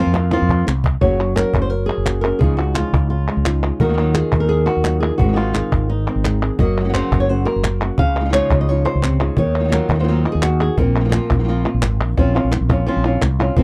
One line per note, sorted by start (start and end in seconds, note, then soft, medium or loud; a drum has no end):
0.00 0.14 F3 medium
0.00 0.14 A#3 medium
0.00 0.14 C4 medium
0.00 0.13 F4 medium
0.06 0.34 F2 medium
0.14 0.31 A#3 soft
0.14 0.32 C4 soft
0.14 0.31 F4 soft
0.14 cajon slap medium
0.31 0.65 F3 medium
0.31 0.66 A#3 medium
0.31 0.66 C4 medium
0.31 0.66 F4 loud
0.31 cajon slap loud
0.42 0.62 F2 loud
0.49 cajon bass medium
0.67 0.95 C2 loud
0.67 muted nylon-string guitar stroke medium
0.67 clap medium
0.84 cajon bass loud
1.01 1.43 F#1 medium
1.01 1.19 C#3 medium
1.01 2.39 F#3 medium
1.01 1.19 F#3 medium
1.01 1.19 A#3 medium
1.01 1.19 C#4 medium
1.01 1.18 F#4 medium
1.01 1.36 C#5 medium
1.01 cajon bass loud
1.19 1.36 A#3 soft
1.19 1.36 C#4 soft
1.19 1.36 F#4 soft
1.36 1.53 F#3 soft
1.36 1.54 A#3 soft
1.36 1.54 C#4 soft
1.36 1.53 F#4 medium
1.36 1.61 A#4 medium
1.36 cajon slap medium
1.36 clap medium
1.54 1.88 F#1 medium
1.54 1.71 A#3 soft
1.54 1.71 C#4 soft
1.54 1.71 F#4 soft
1.54 cajon bass medium
1.62 1.70 C5 medium
1.70 2.20 A#4 loud
1.70 muted nylon-string guitar stroke soft
1.86 2.38 G#4 loud
1.98 2.32 F#1 medium
2.06 2.24 A#3 soft
2.06 2.23 C#4 soft
2.06 2.22 F#4 soft
2.06 cajon slap loud
2.06 clap medium
2.21 2.41 C#4 soft
2.21 2.40 F#4 soft
2.21 2.40 A#4 medium
2.25 2.41 A#3 soft
2.39 2.82 C#2 medium
2.39 2.58 C#3 medium
2.39 3.79 C#3 medium
2.39 2.58 F3 medium
2.39 2.58 G#3 medium
2.39 2.58 D#4 medium
2.39 2.57 F4 medium
2.39 2.56 G#4 medium
2.39 cajon bass medium
2.57 2.75 G#3 soft
2.57 2.76 D#4 soft
2.57 2.75 F4 soft
2.57 2.75 F#4 medium
2.74 2.93 F3 soft
2.74 2.93 G#3 medium
2.74 2.93 D#4 soft
2.74 3.09 F4 medium
2.74 2.92 F4 medium
2.74 cajon slap medium
2.74 clap medium
2.93 3.27 C#2 medium
2.93 3.10 G#3 soft
2.93 3.10 D#4 soft
2.93 3.10 F4 soft
2.93 cajon bass medium
3.10 3.80 F4 medium
3.10 muted nylon-string guitar stroke medium
3.29 3.81 G#3 soft
3.37 3.71 C#2 medium
3.45 3.63 G#3 soft
3.45 3.63 D#4 soft
3.45 3.62 F4 soft
3.45 cajon slap loud
3.45 clap medium
3.63 3.81 G#3 soft
3.63 3.80 D#4 soft
3.63 3.80 F4 soft
3.80 4.21 D#2 medium
3.80 3.83 D#3 medium
3.80 6.59 D#3 medium
3.80 3.83 F#3 medium
3.80 3.84 A#3 medium
3.80 5.18 D#4 soft
3.80 3.84 F4 medium
3.80 4.14 F#4 soft
3.80 4.39 A#4 loud
3.80 cajon bass medium
3.84 3.88 D#3 soft
3.84 3.88 F#3 soft
3.84 3.88 A#3 soft
3.84 3.89 F4 soft
3.89 3.92 D#3 soft
3.89 3.93 F#3 soft
3.89 3.93 A#3 medium
3.89 3.93 F4 medium
3.93 3.97 D#3 medium
3.93 3.97 F#3 medium
3.93 3.97 A#3 medium
3.93 3.98 F4 medium
3.98 4.15 D#3 medium
3.98 4.15 F#3 medium
3.98 4.14 A#3 medium
3.98 4.14 F4 medium
4.14 4.49 F#3 soft
4.14 4.50 A#3 soft
4.14 4.49 F4 soft
4.14 4.48 G#4 medium
4.14 cajon slap medium
4.14 clap medium
4.32 4.67 D#2 loud
4.32 cajon bass medium
4.40 4.84 A#4 medium
4.49 4.66 G#4 medium
4.49 muted nylon-string guitar stroke medium
4.66 5.00 F#4 loud
4.77 5.10 D#2 medium
4.84 5.01 D#3 medium
4.84 5.02 F#3 medium
4.84 5.02 A#3 medium
4.84 5.01 F4 soft
4.84 cajon slap loud
4.84 clap medium
5.00 5.19 F#3 soft
5.00 5.19 A#3 soft
5.00 5.19 F4 soft
5.00 5.17 G#4 medium
5.18 5.61 G#1 medium
5.18 6.57 G#2 medium
5.18 5.27 D#3 medium
5.18 5.27 G#3 medium
5.18 5.28 C4 medium
5.18 5.53 F#4 medium
5.18 5.28 G#4 medium
5.18 cajon bass medium
5.28 5.31 D#3 soft
5.28 5.32 G#3 soft
5.28 5.32 C4 soft
5.28 5.33 G#4 soft
5.32 5.36 D#3 medium
5.32 5.36 G#3 soft
5.32 5.37 C4 medium
5.32 5.89 F4 medium
5.32 5.37 G#4 medium
5.37 5.54 D#3 medium
5.37 5.54 G#3 medium
5.37 5.54 C4 medium
5.37 5.53 G#4 medium
5.53 5.89 G#3 soft
5.53 5.89 C4 soft
5.53 5.88 D#4 medium
5.53 5.89 G#4 soft
5.53 cajon slap medium
5.53 clap medium
5.72 6.06 G#1 medium
5.72 cajon bass medium
5.90 6.59 D#4 medium
5.90 muted nylon-string guitar stroke medium
6.09 6.58 C4 soft
6.16 6.50 G#1 medium
6.24 6.41 D#3 soft
6.24 6.41 G#3 soft
6.24 6.42 C4 soft
6.24 6.41 G#4 medium
6.24 cajon slap loud
6.24 clap medium
6.42 6.60 G#3 soft
6.42 6.59 C4 soft
6.42 6.59 G#4 soft
6.59 7.00 F#1 medium
6.59 7.97 F#3 medium
6.59 7.97 A#3 medium
6.59 7.81 F#4 soft
6.59 7.44 A#4 soft
6.59 6.93 D#5 medium
6.59 muted nylon-string guitar stroke medium
6.59 cajon bass medium
6.80 6.83 F#3 soft
6.80 6.84 A#3 soft
6.80 6.84 C#4 soft
6.80 6.84 F#4 soft
6.84 6.88 F#3 soft
6.84 6.88 A#3 soft
6.84 6.88 C#4 medium
6.84 6.89 F#4 medium
6.89 6.92 F#3 medium
6.89 6.93 A#3 medium
6.89 6.93 C#4 medium
6.89 6.93 F#4 medium
6.93 7.27 C#3 medium
6.93 7.28 F#3 medium
6.93 7.28 A#3 medium
6.93 7.28 C#4 medium
6.93 7.28 F#4 medium
6.93 7.20 C5 medium
6.93 cajon slap medium
6.93 clap medium
7.11 7.45 F#1 medium
7.11 cajon bass medium
7.20 7.29 C#5 medium
7.29 7.46 C#3 medium
7.29 7.46 F#3 medium
7.29 7.46 A#3 medium
7.29 7.46 C#4 medium
7.29 7.45 F#4 medium
7.29 7.81 C5 loud
7.45 7.63 A#3 soft
7.45 7.63 F#4 soft
7.45 7.98 A#4 loud
7.56 7.90 F#1 medium
7.64 muted nylon-string guitar stroke medium
7.64 cajon slap loud
7.64 clap medium
7.81 7.99 A#3 soft
7.81 7.98 C#4 soft
7.81 7.98 F#4 soft
7.81 7.97 F#4 soft
7.98 8.40 C#2 loud
7.98 9.20 C#3 medium
7.98 8.32 F5 loud
7.98 muted nylon-string guitar stroke medium
7.98 cajon bass medium
8.20 8.23 F3 soft
8.20 8.24 G#3 soft
8.20 8.24 D#4 soft
8.20 8.25 F4 soft
8.25 8.28 F3 soft
8.25 8.28 G#3 medium
8.25 8.29 D#4 medium
8.25 8.29 F4 medium
8.29 8.33 F3 medium
8.29 8.33 G#3 medium
8.29 8.33 D#4 medium
8.29 8.34 F4 medium
8.29 8.59 C#5 loud
8.29 cajon slap medium
8.33 8.67 C#3 medium
8.33 8.68 F3 medium
8.33 8.68 G#3 medium
8.33 8.68 D#4 medium
8.33 8.68 F4 medium
8.33 clap medium
8.50 8.85 C#2 medium
8.50 cajon bass medium
8.61 8.69 D#5 medium
8.69 8.85 C#3 medium
8.69 8.85 F3 medium
8.69 8.86 G#3 medium
8.69 8.85 D#4 medium
8.69 8.85 F4 medium
8.69 9.21 C#5 loud
8.85 9.03 G#3 soft
8.85 9.03 D#4 soft
8.85 9.03 F4 soft
8.85 9.38 C5 loud
8.95 9.29 C#2 medium
9.02 9.21 C3 medium
9.02 muted nylon-string guitar stroke medium
9.02 cajon slap medium
9.02 clap medium
9.20 9.38 C#3 medium
9.20 9.38 G#3 soft
9.20 9.38 D#4 soft
9.20 9.37 F4 soft
9.37 9.79 D#2 loud
9.37 10.78 D#3 medium
9.37 10.08 C#5 medium
9.37 muted nylon-string guitar stroke medium
9.37 cajon bass medium
9.59 9.63 D#3 soft
9.59 9.63 F#3 soft
9.59 9.64 A#3 soft
9.59 9.64 F4 soft
9.64 9.67 D#3 soft
9.64 9.68 F#3 soft
9.64 9.68 A#3 soft
9.64 9.68 F4 medium
9.68 9.72 D#3 medium
9.68 9.72 F#3 medium
9.68 9.73 A#3 medium
9.68 9.73 F4 medium
9.68 cajon slap medium
9.73 9.90 D#3 medium
9.73 9.90 F#3 medium
9.73 9.90 A#3 medium
9.73 9.90 F4 medium
9.73 9.99 A#4 medium
9.73 clap medium
9.89 10.25 D#2 medium
9.89 9.94 F#3 soft
9.89 9.94 A#3 soft
9.89 9.95 F4 soft
9.89 cajon bass medium
9.95 9.98 D#3 soft
9.95 9.98 F#3 soft
9.95 9.99 A#3 soft
9.95 9.99 F4 soft
9.99 10.02 D#3 medium
9.99 10.03 F#3 medium
9.99 10.03 A#3 medium
9.99 10.03 F4 medium
9.99 10.32 C5 medium
10.04 10.07 D#3 medium
10.04 10.07 F#3 medium
10.04 10.08 A#3 medium
10.04 10.08 F4 medium
10.08 10.25 D#3 medium
10.08 10.25 F#3 medium
10.08 10.25 A#3 medium
10.08 10.24 F4 medium
10.25 10.42 F#3 soft
10.25 10.42 A#3 soft
10.25 10.42 F4 soft
10.25 10.76 D#5 soft
10.32 10.69 D#2 medium
10.32 10.60 G#4 medium
10.42 10.78 F#4 medium
10.42 muted nylon-string guitar stroke soft
10.42 cajon slap loud
10.42 clap medium
10.61 10.78 G#4 medium
10.78 11.18 A#1 medium
10.78 13.57 A#2 medium
10.78 12.16 C4 medium
10.78 11.66 F4 medium
10.78 12.18 A#4 medium
10.78 muted nylon-string guitar stroke medium
10.78 cajon bass loud
11.00 11.03 F3 soft
11.00 11.04 A#3 soft
11.00 11.04 C4 soft
11.00 11.04 F4 soft
11.05 11.08 F3 soft
11.05 11.08 A#3 medium
11.05 11.08 C4 medium
11.05 11.09 F4 medium
11.09 11.12 F3 medium
11.09 11.13 A#3 medium
11.09 11.13 C4 medium
11.09 11.13 F4 medium
11.09 cajon slap medium
11.09 clap medium
11.14 11.30 F3 medium
11.14 11.30 A#3 medium
11.14 11.30 C4 medium
11.14 11.30 F4 medium
11.30 11.65 A#1 medium
11.30 11.38 A#3 soft
11.30 11.39 C4 soft
11.30 11.39 F4 soft
11.30 cajon bass medium
11.39 11.42 F3 soft
11.39 11.43 A#3 soft
11.39 11.43 C4 soft
11.39 11.44 F4 soft
11.44 11.47 F3 medium
11.44 11.47 A#3 soft
11.44 11.48 C4 medium
11.44 11.48 F4 medium
11.48 11.65 F3 medium
11.48 11.65 A#3 medium
11.48 11.65 C4 medium
11.48 11.64 F4 medium
11.66 11.82 A#3 soft
11.66 11.82 C4 soft
11.66 11.82 F4 soft
11.66 12.16 F4 soft
11.74 11.81 A#1 medium
11.82 11.99 G#1 medium
11.82 muted nylon-string guitar stroke medium
11.82 cajon slap loud
11.82 clap medium
12.01 12.16 A#1 medium
12.17 12.38 A#1 medium
12.17 12.34 F3 medium
12.17 12.35 C4 loud
12.17 12.34 C#4 medium
12.17 12.34 F4 medium
12.17 cajon bass medium
12.17 cajon slap soft
12.35 12.51 C4 soft
12.35 12.51 C#4 soft
12.35 12.51 F4 medium
12.45 12.58 A#1 medium
12.52 muted nylon-string guitar stroke medium
12.52 cajon slap medium
12.52 clap medium
12.61 12.88 A#1 medium
12.69 12.87 C4 soft
12.69 12.86 C#4 soft
12.69 12.86 F4 medium
12.69 cajon bass loud
12.86 13.03 F3 medium
12.86 13.04 C4 medium
12.86 13.04 C#4 medium
12.86 13.04 F4 medium
12.97 13.17 A#1 medium
13.05 13.22 C4 medium
13.05 13.21 C#4 medium
13.05 13.21 F4 medium
13.21 13.49 C2 loud
13.21 muted nylon-string guitar stroke medium
13.21 cajon slap loud
13.21 clap medium
13.39 13.56 C4 soft
13.39 13.57 C#4 medium
13.39 13.56 F4 medium
13.56 13.63 F1 loud
13.56 13.63 F3 medium
13.56 13.63 A#3 medium
13.56 13.63 C4 medium
13.56 13.63 F4 medium
13.56 cajon bass medium